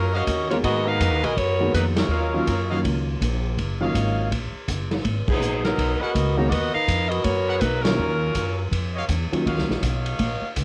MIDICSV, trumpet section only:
0, 0, Header, 1, 2, 480
1, 0, Start_track
1, 0, Key_signature, -6, "minor"
1, 0, Tempo, 367647
1, 829, Time_signature, 4, 2, 24, 8
1, 13896, End_track
2, 0, Start_track
2, 0, Title_t, "Trumpet section"
2, 0, Program_c, 0, 61
2, 162, Note_on_c, 0, 66, 87
2, 162, Note_on_c, 0, 73, 76
2, 167, Note_on_c, 0, 75, 77
2, 167, Note_on_c, 0, 77, 94
2, 285, Note_off_c, 0, 66, 0
2, 285, Note_off_c, 0, 73, 0
2, 288, Note_off_c, 0, 75, 0
2, 289, Note_off_c, 0, 77, 0
2, 814, Note_on_c, 0, 59, 78
2, 814, Note_on_c, 0, 66, 92
2, 819, Note_on_c, 0, 82, 77
2, 822, Note_on_c, 0, 68, 82
2, 1543, Note_off_c, 0, 59, 0
2, 1543, Note_off_c, 0, 66, 0
2, 1546, Note_off_c, 0, 82, 0
2, 1547, Note_off_c, 0, 68, 0
2, 1595, Note_on_c, 0, 70, 73
2, 1597, Note_on_c, 0, 80, 88
2, 1599, Note_on_c, 0, 71, 68
2, 1601, Note_on_c, 0, 68, 78
2, 1721, Note_off_c, 0, 70, 0
2, 1722, Note_off_c, 0, 80, 0
2, 1723, Note_off_c, 0, 71, 0
2, 1724, Note_off_c, 0, 68, 0
2, 2735, Note_on_c, 0, 73, 75
2, 2735, Note_on_c, 0, 75, 78
2, 2739, Note_on_c, 0, 65, 84
2, 2739, Note_on_c, 0, 77, 96
2, 3463, Note_off_c, 0, 73, 0
2, 3463, Note_off_c, 0, 75, 0
2, 3465, Note_off_c, 0, 65, 0
2, 3465, Note_off_c, 0, 77, 0
2, 3523, Note_on_c, 0, 66, 88
2, 3524, Note_on_c, 0, 73, 79
2, 3525, Note_on_c, 0, 77, 94
2, 3526, Note_on_c, 0, 75, 81
2, 3644, Note_off_c, 0, 66, 0
2, 3645, Note_off_c, 0, 73, 0
2, 3646, Note_off_c, 0, 77, 0
2, 3647, Note_off_c, 0, 75, 0
2, 4967, Note_on_c, 0, 73, 89
2, 4967, Note_on_c, 0, 77, 105
2, 4969, Note_on_c, 0, 75, 82
2, 5589, Note_off_c, 0, 73, 0
2, 5589, Note_off_c, 0, 77, 0
2, 5590, Note_off_c, 0, 75, 0
2, 7834, Note_on_c, 0, 68, 87
2, 7840, Note_on_c, 0, 71, 77
2, 7843, Note_on_c, 0, 70, 76
2, 7844, Note_on_c, 0, 78, 89
2, 7958, Note_off_c, 0, 68, 0
2, 7962, Note_off_c, 0, 71, 0
2, 7964, Note_off_c, 0, 70, 0
2, 7965, Note_off_c, 0, 78, 0
2, 9751, Note_on_c, 0, 78, 88
2, 9755, Note_on_c, 0, 70, 78
2, 9757, Note_on_c, 0, 71, 76
2, 9760, Note_on_c, 0, 68, 80
2, 9877, Note_off_c, 0, 78, 0
2, 9879, Note_off_c, 0, 70, 0
2, 9880, Note_off_c, 0, 71, 0
2, 9882, Note_off_c, 0, 68, 0
2, 11672, Note_on_c, 0, 66, 81
2, 11680, Note_on_c, 0, 73, 75
2, 11681, Note_on_c, 0, 77, 89
2, 11683, Note_on_c, 0, 75, 73
2, 11798, Note_off_c, 0, 66, 0
2, 11802, Note_off_c, 0, 73, 0
2, 11803, Note_off_c, 0, 77, 0
2, 11804, Note_off_c, 0, 75, 0
2, 12349, Note_on_c, 0, 75, 75
2, 12351, Note_on_c, 0, 73, 76
2, 12354, Note_on_c, 0, 77, 94
2, 12355, Note_on_c, 0, 66, 82
2, 13682, Note_off_c, 0, 73, 0
2, 13682, Note_off_c, 0, 75, 0
2, 13684, Note_off_c, 0, 77, 0
2, 13685, Note_off_c, 0, 66, 0
2, 13896, End_track
0, 0, End_of_file